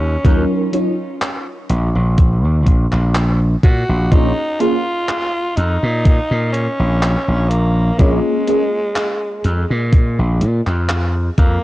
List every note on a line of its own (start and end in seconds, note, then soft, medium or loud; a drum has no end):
0.00 0.15 D#2 medium
0.00 0.74 C#4 medium
0.24 0.44 D#2 medium
0.24 0.68 F#3 medium
0.24 0.68 C#4 medium
0.24 0.68 D#4 medium
0.24 0.68 F4 medium
0.24 0.68 A#4 loud
0.24 kick loud
0.24 closed hi-hat medium
0.72 0.86 F#3 medium
0.72 0.87 C#4 medium
0.72 0.87 D#4 medium
0.72 0.87 F4 medium
0.72 0.87 C#5 medium
0.72 closed hi-hat medium
1.22 clap loud
1.22 closed hi-hat medium
1.70 1.89 A#1 medium
1.70 closed hi-hat medium
1.95 2.44 A#1 medium
2.18 kick loud
2.18 closed hi-hat medium
2.44 2.66 D#2 medium
2.66 2.86 A#1 medium
2.66 kick medium
2.66 closed hi-hat medium
2.92 3.54 A#1 medium
2.92 clap soft
3.15 clap loud
3.15 closed hi-hat medium
3.63 3.83 A#2 medium
3.63 4.13 F#4 loud
3.63 kick loud
3.63 closed hi-hat medium
3.89 4.06 A#1 medium
4.11 4.31 A#1 medium
4.11 4.25 A#3 medium
4.11 4.25 C#4 medium
4.11 4.62 D#4 loud
4.11 4.25 F4 medium
4.11 4.26 G#4 medium
4.11 4.26 C#5 medium
4.11 kick loud
4.11 closed hi-hat medium
4.60 4.74 A#3 loud
4.60 4.74 C#4 medium
4.60 5.57 F4 loud
4.60 4.74 F4 medium
4.60 4.74 G#4 medium
4.60 4.74 F5 loud
4.60 closed hi-hat medium
5.09 clap loud
5.09 closed hi-hat medium
5.56 5.76 F2 medium
5.56 6.52 D#4 loud
5.56 closed hi-hat medium
5.83 6.18 A#2 loud
6.05 kick loud
6.05 closed hi-hat medium
6.31 6.66 A#2 medium
6.53 7.51 C#4 loud
6.53 closed hi-hat medium
6.79 7.15 A#1 medium
7.02 clap loud
7.02 closed hi-hat medium
7.28 7.90 A#1 medium
7.49 8.00 A#3 medium
7.49 closed hi-hat medium
7.98 8.18 A#1 medium
7.98 9.92 G#3 loud
7.98 8.41 A#3 medium
7.98 8.42 C#4 medium
7.98 8.42 F4 medium
7.98 8.42 G#4 medium
7.98 8.42 C#5 loud
7.98 kick loud
7.98 closed hi-hat medium
8.47 8.61 A#3 medium
8.47 8.61 C#4 medium
8.47 8.61 F4 medium
8.47 8.61 G#4 medium
8.47 8.62 D#5 medium
8.47 closed hi-hat medium
8.96 clap loud
8.96 closed hi-hat medium
9.44 9.64 F2 medium
9.44 closed hi-hat medium
9.70 10.20 A#2 loud
9.93 kick loud
9.93 closed hi-hat medium
10.19 10.43 A#1 medium
10.41 10.60 A#2 medium
10.41 closed hi-hat medium
10.67 11.28 F2 medium
10.67 clap soft
10.89 clap loud
10.89 closed hi-hat medium
11.38 11.57 F2 medium
11.38 11.64 A#3 medium
11.38 kick loud
11.38 closed hi-hat medium